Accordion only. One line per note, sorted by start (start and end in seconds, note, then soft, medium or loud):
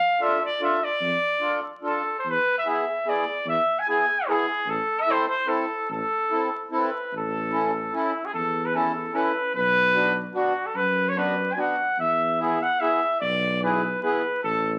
0.20 0.39 D4 medium
0.20 0.39 F4 soft
0.20 0.39 A4 medium
0.61 0.80 D4 soft
0.61 0.80 F4 soft
0.61 0.80 A4 medium
1.40 1.60 D4 medium
1.40 1.60 F4 medium
1.40 1.61 A4 medium
1.83 2.02 D4 medium
1.83 2.02 F4 soft
1.83 2.02 A4 medium
2.65 2.84 B3 medium
2.65 2.84 E4 medium
2.65 2.84 G#4 medium
3.06 3.25 B3 medium
3.06 3.25 E4 medium
3.06 3.25 G#4 medium
3.88 4.05 B3 medium
3.88 4.06 E4 medium
3.88 4.06 G#4 medium
4.28 4.46 B3 medium
4.28 4.46 E4 medium
4.28 4.46 G#4 medium
5.07 5.26 C4 medium
5.07 5.26 E4 medium
5.07 5.26 A4 medium
5.46 5.66 C4 medium
5.46 5.66 E4 medium
5.46 5.66 A4 medium
6.31 6.49 C4 medium
6.31 6.49 E4 soft
6.31 6.49 A4 medium
6.71 6.90 C4 medium
6.71 6.90 E4 medium
6.71 6.90 A4 medium
7.52 7.71 C#4 medium
7.52 7.71 E4 soft
7.52 7.72 A4 medium
7.93 8.12 C#4 medium
7.93 8.12 E4 medium
7.93 8.12 A4 medium
8.74 8.92 C#4 medium
8.74 8.92 E4 medium
8.74 8.93 A4 medium
9.13 9.32 C#4 medium
9.13 9.32 E4 soft
9.13 9.32 A4 medium
9.94 10.12 B3 medium
9.94 10.13 D4 medium
9.94 10.13 F#4 medium
10.34 10.53 B3 medium
10.34 10.53 D4 medium
10.34 10.53 F#4 medium
11.16 11.35 B3 medium
11.16 11.35 D4 medium
11.16 11.35 F#4 medium
11.57 11.76 B3 soft
11.57 11.76 D4 soft
11.57 11.76 F#4 soft
12.40 12.59 B3 medium
12.40 12.59 E4 medium
12.40 12.59 G#4 medium
12.81 13.00 B3 medium
12.81 13.00 E4 medium
12.81 13.00 G#4 medium
13.62 13.81 B3 medium
13.62 13.82 E4 medium
13.62 13.82 G#4 medium
14.03 14.22 B3 medium
14.03 14.22 E4 medium
14.03 14.22 G#4 medium